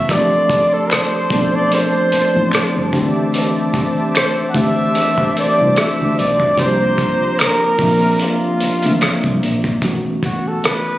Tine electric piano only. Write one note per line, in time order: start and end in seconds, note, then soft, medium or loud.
0.00 0.11 E3 medium
0.00 0.11 A3 medium
0.00 0.11 B3 medium
0.00 0.11 C#4 medium
0.00 0.11 E4 medium
0.00 0.11 F#4 medium
0.10 1.10 F3 medium
0.10 1.10 A3 medium
0.10 0.17 B3 soft
0.10 1.11 D4 medium
0.10 1.11 G4 medium
0.17 1.14 C4 medium
1.31 2.13 F3 medium
1.31 2.13 A3 medium
1.31 1.38 B3 medium
1.31 2.14 D4 medium
1.31 2.14 A4 medium
1.39 2.17 C4 medium
2.34 2.93 F3 medium
2.34 2.91 A3 medium
2.34 2.40 B3 soft
2.34 2.92 D4 medium
2.34 2.94 E4 medium
2.41 2.92 C4 medium
2.92 4.25 E3 medium
2.92 4.25 A3 medium
2.92 4.25 C4 medium
2.92 4.25 D4 medium
2.92 4.26 G4 medium
4.55 5.37 E3 medium
4.55 5.37 A3 medium
4.55 5.38 C4 medium
4.55 5.38 D4 medium
4.55 5.38 G4 medium
5.58 6.40 E3 medium
5.58 6.41 A3 medium
5.58 6.41 C4 medium
5.58 6.41 D4 medium
5.58 5.66 E4 medium
5.68 6.45 F#4 medium
6.57 7.58 F3 medium
6.57 7.58 A#3 medium
6.57 7.58 C4 medium
6.57 7.59 D4 medium
6.57 7.59 G4 medium
7.80 8.62 F3 medium
7.80 8.62 A#3 medium
7.80 8.62 C4 medium
7.80 8.62 D4 medium
7.80 8.63 E5 medium
8.84 8.89 E3 medium
8.84 9.66 A#3 medium
8.84 9.66 C4 medium
8.84 9.66 D4 medium
8.84 9.67 E5 medium
8.91 9.69 F3 medium
9.82 10.98 E3 medium
9.82 10.98 A3 medium
9.82 10.98 B3 medium
9.82 10.98 C#4 medium
9.82 10.98 F#4 medium